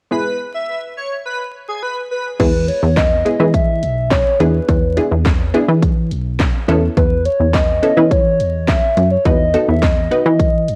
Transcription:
0.11 G#3 B3 E4 G#4 B4
0.54 E5
0.97 C#5
1.26 B4
1.68 G#4
1.83 B4
2.11 B4
2.40 E2 G#3 B3 E4 G#4 B4, kick, closed hi-hat, crash
2.68 C#5, closed hi-hat
2.83 E2
2.96 D#5, kick, snare, clap, closed hi-hat
3.25 G#3 B3 E4 G#4, closed hi-hat
3.40 E3 G#3 B3 E4 G#4
3.54 E5, kick, closed hi-hat
3.83 B1, closed hi-hat
4.11 C#5, kick, snare, clap, closed hi-hat
4.40 E2 B3 D4 E4 G#4 B4, closed hi-hat
4.68 E2, kick, closed hi-hat
4.97 B3 D4 E4 G#4, closed hi-hat
5.11 E2
5.25 kick, snare, clap, closed hi-hat
5.54 B3 D4 E4 G#4, closed hi-hat
5.68 E3
5.83 kick, closed hi-hat
6.11 B1, closed hi-hat
6.39 kick, snare, clap, closed hi-hat
6.68 E2 B3 C#4 E4 A4, closed hi-hat
6.97 E2 B4, kick, closed hi-hat
7.25 C#5, closed hi-hat
7.40 E2
7.54 D#5, kick, snare, clap, closed hi-hat
7.83 B3 C#4 E4 A4, closed hi-hat
7.97 E3 B3 C#4 E4 B4
8.11 C#5, kick, closed hi-hat
8.40 E2, closed hi-hat
8.68 E5, kick, snare, clap, closed hi-hat
8.97 F#2, closed hi-hat
9.11 C#5
9.25 E2 B3 D#4 F#4 B4 D#5, kick, closed hi-hat
9.54 B3 D#4 F#4 A4, closed hi-hat
9.68 E2 E5
9.82 D#5, kick, snare, clap, closed hi-hat
10.11 B3 D#4 F#4 B4, closed hi-hat
10.26 E3
10.40 kick, closed hi-hat
10.68 F#2, closed hi-hat

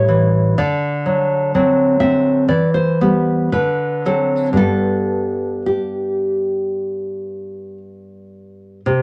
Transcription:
Already playing: A2 G3 E4 C#5
0.08 E3
0.58 D3 D5
1.06 F#3
1.55 F#3 C4
2.00 C4 E5
2.48 E3 D5
2.74 C5
3.01 G3 B3
3.52 D3 B4
4.06 F#3 C4 A4
4.53 G2 G3 B3
4.57 A4
5.66 G4
8.86 C3

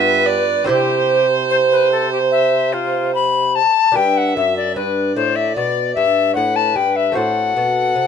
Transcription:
Already playing: G2 B3 F4 G4 B4 E5
0.26 D5
0.64 C4 E4 G4 C5
0.69 C3 G4
1.50 C5
1.72 B4
1.92 A4
2.12 G4
2.31 E5
2.73 F4
3.15 B5
3.55 A5
3.92 D4 B4 G5
3.96 G2 E5
4.17 F#5
4.36 F#2 E5
4.57 D5
4.76 G2 B4 D5
5.16 A2 C5
5.36 E5
5.56 B2 D5
5.95 G2 E5
6.35 A2 B4 F#5
6.56 A5
6.76 G2 G5
6.96 E5
7.12 C4 F#4 A4 C5 F#5
7.16 A2
7.56 B2
7.96 C3

